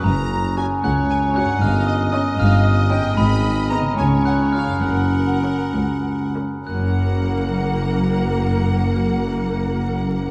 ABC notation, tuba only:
X:1
M:6/8
L:1/8
Q:3/8=69
K:F#
V:1 name="Tuba" clef=bass
F,,,3 C,,3 | =G,,,3 G,,,3 | G,,,3 C,,3 | F,,,3 C,,3 |
F,,,6- | F,,,6 |]